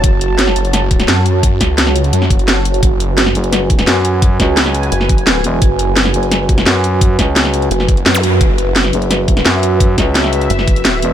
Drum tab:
HH |x-x-x-xxx-xxx-x-|x-x-x-xxx-xxx-xx|x-x-x-xxx-xxx-x-|x-x-x-xxx-xxx-x-|
SD |----oo--o--oo---|--o-oo---o--o---|----oo--o--oo---|--o-oo---o--o---|
BD |o---------o-----|o-o-------o-----|o---------o-----|o-o-------o-----|

HH |x-x-x-xxx-xxx-x-|x-x-x-xxx-xxx-x-|x-x-x-xxx-xxx-x-|x-x-x-xxx-xxx-x-|
SD |----oo--o--oo---|--o-oo---o--o---|----oo--o--oo---|--o-oo---o--o---|
BD |o---------o-----|o-o-------o-----|o---------o-----|o-o-------o-----|